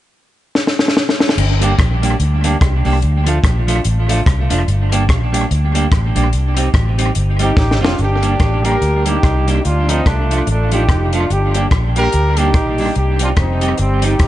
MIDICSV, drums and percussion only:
0, 0, Header, 1, 2, 480
1, 0, Start_track
1, 0, Key_signature, -2, "minor"
1, 0, Tempo, 413223
1, 1601, Time_signature, 4, 2, 24, 8
1, 16584, End_track
2, 0, Start_track
2, 0, Title_t, "Drums"
2, 641, Note_on_c, 9, 38, 62
2, 757, Note_off_c, 9, 38, 0
2, 782, Note_on_c, 9, 38, 57
2, 898, Note_off_c, 9, 38, 0
2, 920, Note_on_c, 9, 38, 72
2, 1023, Note_off_c, 9, 38, 0
2, 1023, Note_on_c, 9, 38, 65
2, 1124, Note_off_c, 9, 38, 0
2, 1124, Note_on_c, 9, 38, 86
2, 1240, Note_off_c, 9, 38, 0
2, 1266, Note_on_c, 9, 38, 72
2, 1382, Note_off_c, 9, 38, 0
2, 1399, Note_on_c, 9, 38, 85
2, 1500, Note_off_c, 9, 38, 0
2, 1500, Note_on_c, 9, 38, 91
2, 1601, Note_on_c, 9, 49, 87
2, 1616, Note_off_c, 9, 38, 0
2, 1717, Note_off_c, 9, 49, 0
2, 1877, Note_on_c, 9, 42, 93
2, 1993, Note_off_c, 9, 42, 0
2, 2075, Note_on_c, 9, 36, 115
2, 2077, Note_on_c, 9, 42, 78
2, 2085, Note_on_c, 9, 37, 107
2, 2191, Note_off_c, 9, 36, 0
2, 2193, Note_off_c, 9, 42, 0
2, 2201, Note_off_c, 9, 37, 0
2, 2360, Note_on_c, 9, 42, 83
2, 2476, Note_off_c, 9, 42, 0
2, 2552, Note_on_c, 9, 42, 59
2, 2669, Note_off_c, 9, 42, 0
2, 2833, Note_on_c, 9, 42, 86
2, 2950, Note_off_c, 9, 42, 0
2, 3033, Note_on_c, 9, 36, 111
2, 3034, Note_on_c, 9, 42, 69
2, 3040, Note_on_c, 9, 37, 105
2, 3149, Note_off_c, 9, 36, 0
2, 3150, Note_off_c, 9, 42, 0
2, 3156, Note_off_c, 9, 37, 0
2, 3309, Note_on_c, 9, 46, 47
2, 3425, Note_off_c, 9, 46, 0
2, 3511, Note_on_c, 9, 42, 60
2, 3627, Note_off_c, 9, 42, 0
2, 3793, Note_on_c, 9, 42, 90
2, 3909, Note_off_c, 9, 42, 0
2, 3991, Note_on_c, 9, 36, 107
2, 3993, Note_on_c, 9, 42, 69
2, 4001, Note_on_c, 9, 37, 104
2, 4107, Note_off_c, 9, 36, 0
2, 4109, Note_off_c, 9, 42, 0
2, 4118, Note_off_c, 9, 37, 0
2, 4277, Note_on_c, 9, 42, 87
2, 4393, Note_off_c, 9, 42, 0
2, 4466, Note_on_c, 9, 42, 67
2, 4582, Note_off_c, 9, 42, 0
2, 4754, Note_on_c, 9, 42, 87
2, 4870, Note_off_c, 9, 42, 0
2, 4953, Note_on_c, 9, 36, 113
2, 4958, Note_on_c, 9, 42, 69
2, 4964, Note_on_c, 9, 37, 102
2, 5069, Note_off_c, 9, 36, 0
2, 5074, Note_off_c, 9, 42, 0
2, 5080, Note_off_c, 9, 37, 0
2, 5232, Note_on_c, 9, 42, 87
2, 5348, Note_off_c, 9, 42, 0
2, 5438, Note_on_c, 9, 42, 62
2, 5554, Note_off_c, 9, 42, 0
2, 5719, Note_on_c, 9, 42, 96
2, 5835, Note_off_c, 9, 42, 0
2, 5912, Note_on_c, 9, 36, 97
2, 5915, Note_on_c, 9, 42, 71
2, 5923, Note_on_c, 9, 37, 123
2, 6028, Note_off_c, 9, 36, 0
2, 6031, Note_off_c, 9, 42, 0
2, 6039, Note_off_c, 9, 37, 0
2, 6203, Note_on_c, 9, 42, 94
2, 6319, Note_off_c, 9, 42, 0
2, 6400, Note_on_c, 9, 42, 66
2, 6516, Note_off_c, 9, 42, 0
2, 6679, Note_on_c, 9, 42, 88
2, 6795, Note_off_c, 9, 42, 0
2, 6873, Note_on_c, 9, 36, 114
2, 6874, Note_on_c, 9, 42, 61
2, 6880, Note_on_c, 9, 37, 103
2, 6989, Note_off_c, 9, 36, 0
2, 6990, Note_off_c, 9, 42, 0
2, 6996, Note_off_c, 9, 37, 0
2, 7153, Note_on_c, 9, 42, 90
2, 7270, Note_off_c, 9, 42, 0
2, 7351, Note_on_c, 9, 42, 64
2, 7467, Note_off_c, 9, 42, 0
2, 7628, Note_on_c, 9, 42, 96
2, 7744, Note_off_c, 9, 42, 0
2, 7827, Note_on_c, 9, 42, 70
2, 7828, Note_on_c, 9, 36, 108
2, 7835, Note_on_c, 9, 37, 105
2, 7943, Note_off_c, 9, 42, 0
2, 7944, Note_off_c, 9, 36, 0
2, 7952, Note_off_c, 9, 37, 0
2, 8115, Note_on_c, 9, 42, 93
2, 8231, Note_off_c, 9, 42, 0
2, 8305, Note_on_c, 9, 42, 66
2, 8421, Note_off_c, 9, 42, 0
2, 8587, Note_on_c, 9, 42, 90
2, 8703, Note_off_c, 9, 42, 0
2, 8790, Note_on_c, 9, 38, 51
2, 8791, Note_on_c, 9, 36, 122
2, 8906, Note_off_c, 9, 38, 0
2, 8907, Note_off_c, 9, 36, 0
2, 8958, Note_on_c, 9, 38, 61
2, 9075, Note_off_c, 9, 38, 0
2, 9113, Note_on_c, 9, 38, 102
2, 9229, Note_off_c, 9, 38, 0
2, 9275, Note_on_c, 9, 42, 54
2, 9392, Note_off_c, 9, 42, 0
2, 9556, Note_on_c, 9, 42, 86
2, 9672, Note_off_c, 9, 42, 0
2, 9753, Note_on_c, 9, 42, 74
2, 9756, Note_on_c, 9, 36, 105
2, 9761, Note_on_c, 9, 37, 115
2, 9869, Note_off_c, 9, 42, 0
2, 9872, Note_off_c, 9, 36, 0
2, 9877, Note_off_c, 9, 37, 0
2, 10044, Note_on_c, 9, 42, 91
2, 10160, Note_off_c, 9, 42, 0
2, 10243, Note_on_c, 9, 42, 60
2, 10359, Note_off_c, 9, 42, 0
2, 10520, Note_on_c, 9, 42, 82
2, 10637, Note_off_c, 9, 42, 0
2, 10725, Note_on_c, 9, 36, 108
2, 10727, Note_on_c, 9, 42, 71
2, 10733, Note_on_c, 9, 37, 100
2, 10841, Note_off_c, 9, 36, 0
2, 10843, Note_off_c, 9, 42, 0
2, 10849, Note_off_c, 9, 37, 0
2, 11008, Note_on_c, 9, 42, 79
2, 11125, Note_off_c, 9, 42, 0
2, 11208, Note_on_c, 9, 42, 62
2, 11324, Note_off_c, 9, 42, 0
2, 11487, Note_on_c, 9, 42, 103
2, 11603, Note_off_c, 9, 42, 0
2, 11686, Note_on_c, 9, 36, 103
2, 11687, Note_on_c, 9, 42, 75
2, 11695, Note_on_c, 9, 37, 107
2, 11802, Note_off_c, 9, 36, 0
2, 11803, Note_off_c, 9, 42, 0
2, 11811, Note_off_c, 9, 37, 0
2, 11977, Note_on_c, 9, 42, 84
2, 12093, Note_off_c, 9, 42, 0
2, 12162, Note_on_c, 9, 42, 65
2, 12278, Note_off_c, 9, 42, 0
2, 12447, Note_on_c, 9, 42, 85
2, 12563, Note_off_c, 9, 42, 0
2, 12645, Note_on_c, 9, 36, 101
2, 12647, Note_on_c, 9, 42, 67
2, 12653, Note_on_c, 9, 37, 103
2, 12762, Note_off_c, 9, 36, 0
2, 12763, Note_off_c, 9, 42, 0
2, 12769, Note_off_c, 9, 37, 0
2, 12925, Note_on_c, 9, 42, 76
2, 13041, Note_off_c, 9, 42, 0
2, 13130, Note_on_c, 9, 42, 64
2, 13247, Note_off_c, 9, 42, 0
2, 13410, Note_on_c, 9, 42, 95
2, 13526, Note_off_c, 9, 42, 0
2, 13603, Note_on_c, 9, 42, 74
2, 13604, Note_on_c, 9, 36, 103
2, 13612, Note_on_c, 9, 37, 117
2, 13719, Note_off_c, 9, 42, 0
2, 13721, Note_off_c, 9, 36, 0
2, 13728, Note_off_c, 9, 37, 0
2, 13891, Note_on_c, 9, 42, 85
2, 14008, Note_off_c, 9, 42, 0
2, 14083, Note_on_c, 9, 42, 67
2, 14200, Note_off_c, 9, 42, 0
2, 14366, Note_on_c, 9, 42, 85
2, 14482, Note_off_c, 9, 42, 0
2, 14566, Note_on_c, 9, 42, 68
2, 14567, Note_on_c, 9, 36, 119
2, 14572, Note_on_c, 9, 37, 97
2, 14682, Note_off_c, 9, 42, 0
2, 14683, Note_off_c, 9, 36, 0
2, 14688, Note_off_c, 9, 37, 0
2, 14847, Note_on_c, 9, 46, 44
2, 14963, Note_off_c, 9, 46, 0
2, 15048, Note_on_c, 9, 42, 57
2, 15164, Note_off_c, 9, 42, 0
2, 15325, Note_on_c, 9, 42, 98
2, 15441, Note_off_c, 9, 42, 0
2, 15525, Note_on_c, 9, 42, 72
2, 15528, Note_on_c, 9, 36, 99
2, 15533, Note_on_c, 9, 37, 119
2, 15641, Note_off_c, 9, 42, 0
2, 15644, Note_off_c, 9, 36, 0
2, 15649, Note_off_c, 9, 37, 0
2, 15813, Note_on_c, 9, 42, 86
2, 15930, Note_off_c, 9, 42, 0
2, 16002, Note_on_c, 9, 42, 58
2, 16118, Note_off_c, 9, 42, 0
2, 16287, Note_on_c, 9, 42, 83
2, 16403, Note_off_c, 9, 42, 0
2, 16486, Note_on_c, 9, 42, 67
2, 16491, Note_on_c, 9, 36, 101
2, 16492, Note_on_c, 9, 37, 91
2, 16584, Note_off_c, 9, 36, 0
2, 16584, Note_off_c, 9, 37, 0
2, 16584, Note_off_c, 9, 42, 0
2, 16584, End_track
0, 0, End_of_file